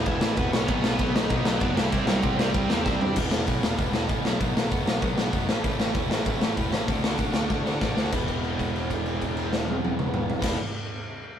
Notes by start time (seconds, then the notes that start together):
0.06 E1 E2 B2 E3 G#3 B3 E4, kick, crash
0.21 A1 E2 B2 E3 G#3 B3 E4, snare
0.37 E1 E2 B2 E3 G#3 B3 E4 B4, kick, crash
0.52 B1 E2 B2 E3 G#3 B3 C#4 E4 C#5, snare
0.68 B1 B2 D#3 F#3 B3 C#4 D#4 C#5, kick, crash
0.84 B1 B2 D#3 F#3 B3 D#4, snare
0.89 B3 B4
0.99 B1 B2 D#3 F#3 B3 D#4, kick, crash
1.14 B1 B2 D#3 F#3 B3 D#4 D#5, snare
1.23 D#4 D#5
1.29 B1 B2 D#3 F#3 B3 D#4, kick, crash
1.45 B1 B2 D#3 F#3 B3 D#4, snare
1.60 F#1 B2 D#3 F#3 B3 D4 D#4 D5, kick, crash
1.77 C2 C3 G3 C4 E4, snare
1.85 E3 E4
1.92 C2 C3 G3 C4 E4, kick, crash
2.06 C2 C3 F#3 G3 C4 F#4, snare
2.10 E4
2.22 C2 C3 G3 C4 E4, kick, crash
2.37 C2 C3 G3 C4 E4 G4, snare
2.53 C2 C3 G3 C4 E4, kick, crash
2.70 E2 C3 G3 C4 E4, snare
2.85 C2 C3 G3 C4 E4 C5, kick, snare
3.01 G2 C3 G3 C4 D4 E4 D5, floor tom
3.16 E1 E2 B2 E3 G#3 B3 E4, kick, crash
3.31 E1 E2 B2 E3 G#3 B3 E4, snare
3.46 B1 E2 B2 E3 G#3 B3 E4, kick, open hi-hat
3.63 E1 E2 B2 E3 G#3 B3 E4, snare
3.78 E1 E2 B2 E3 G#3 B3 E4, kick, open hi-hat
3.93 E1 E2 B2 E3 G#3 B3 E4, snare
4.08 A1 E2 B2 E3 G#3 B3 E4, kick, open hi-hat
4.25 B1 B2 D#3 F#3 B3 D#4, snare
4.40 B1 B2 D#3 F#3 B3 D#4, kick, open hi-hat
4.54 B1 B2 D#3 F#3 B3 D#4, snare
4.71 F#1 B2 D#3 F#3 B3 D#4, kick, open hi-hat
4.85 B1 B2 D#3 F#3 B3 D#4, snare
5.02 B1 B2 D#3 F#3 B3 D#4, kick, open hi-hat
5.16 B1 B2 D#3 F#3 B3 D#4, snare
5.32 F#1 B2 D#3 F#3 B3 D#4, kick, open hi-hat
5.47 A1 A2 E3 A3 C#4 E4, snare
5.63 A1 A2 E3 A3 C#4 E4, kick, open hi-hat
5.78 A1 A2 E3 A3 C#4 E4, snare
5.93 E1 A2 E3 A3 C#4 E4, kick, open hi-hat
6.09 A1 A2 E3 A3 C#4 E4, snare
6.25 A1 A2 E3 A3 C#4 E4, kick, open hi-hat
6.40 A1 A2 E3 A3 C#4 E4, snare
6.56 E1 A2 E3 A3 C#4 E4, kick, open hi-hat
6.72 A1 A2 E3 A3 C#4 E4, snare
6.88 D2 D3 A3 D4 F#4, kick, open hi-hat
7.03 D2 D3 A3 D4 F#4, snare
7.18 A1 D3 A3 D4 F#4, kick, open hi-hat
7.34 D2 D3 A3 D4 F#4, snare
7.49 D2 D3 A3 D4 F#4, kick, snare
7.64 D2 D3 A3 D4 F#4, snare
7.81 A1 D3 A3 D4 F#4, kick, snare
7.97 D2 D3 A3 D4 F#4, snare
8.10 E1 E2 B2 E3 G#3 B3 E4, kick, crash
8.14 E3
8.28 kick, crash
8.44 crash
8.59 kick, crash
8.76 crash
8.90 kick, crash
9.06 crash
9.21 kick, crash
9.37 crash
9.53 snare
9.68 high tom
9.85 high tom
9.99 mid tom
10.14 mid tom
10.30 floor tom
10.38 E1 E2 B2 E3, kick
10.43 G#3 B3 E4, snare, crash